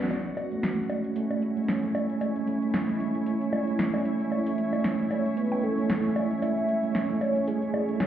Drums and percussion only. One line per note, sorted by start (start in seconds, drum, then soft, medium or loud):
0.11 closed hi-hat medium
0.11 high bongo soft
0.25 closed hi-hat soft
0.37 closed hi-hat medium
0.37 high bongo medium
0.52 closed hi-hat soft
0.63 snare loud
0.63 closed hi-hat medium
0.78 closed hi-hat soft
0.90 closed hi-hat medium
0.90 high bongo medium
1.04 closed hi-hat soft
1.16 closed hi-hat medium
1.31 closed hi-hat soft
1.31 high bongo soft
1.42 closed hi-hat soft
1.57 closed hi-hat soft
1.68 snare loud
1.68 closed hi-hat medium
1.83 closed hi-hat soft
1.95 closed hi-hat medium
1.95 high bongo medium
2.09 closed hi-hat soft
2.21 closed hi-hat medium
2.21 high bongo soft
2.36 closed hi-hat soft
2.47 closed hi-hat medium
2.62 closed hi-hat soft
2.74 snare loud
2.89 closed hi-hat soft
3.00 closed hi-hat medium
3.15 closed hi-hat soft
3.26 closed hi-hat medium
3.41 closed hi-hat soft
3.53 closed hi-hat soft
3.53 high bongo medium
3.67 closed hi-hat soft
3.79 snare loud
3.79 closed hi-hat medium
3.94 closed hi-hat soft
3.94 high bongo medium
4.05 closed hi-hat medium
4.20 closed hi-hat soft
4.32 high bongo soft
4.46 closed hi-hat medium
4.58 closed hi-hat medium
4.73 closed hi-hat soft
4.73 high bongo medium
4.84 snare loud
4.84 closed hi-hat medium
4.99 closed hi-hat soft
5.11 closed hi-hat medium
5.11 high bongo medium
5.25 closed hi-hat soft
5.37 closed hi-hat medium
5.52 closed hi-hat soft
5.52 high bongo soft
5.63 closed hi-hat soft
5.78 closed hi-hat soft
5.90 snare loud
5.90 closed hi-hat medium
6.04 closed hi-hat soft
6.16 closed hi-hat medium
6.16 high bongo medium
6.31 closed hi-hat soft
6.42 closed hi-hat medium
6.42 high bongo soft
6.57 closed hi-hat soft
6.69 closed hi-hat medium
6.83 closed hi-hat soft
6.95 snare loud
6.95 closed hi-hat medium
7.10 closed hi-hat soft
7.21 closed hi-hat medium
7.21 high bongo medium
7.36 closed hi-hat soft
7.47 closed hi-hat medium
7.62 closed hi-hat soft
7.74 closed hi-hat soft
7.74 high bongo medium
7.89 closed hi-hat soft
8.00 snare loud
8.00 closed hi-hat medium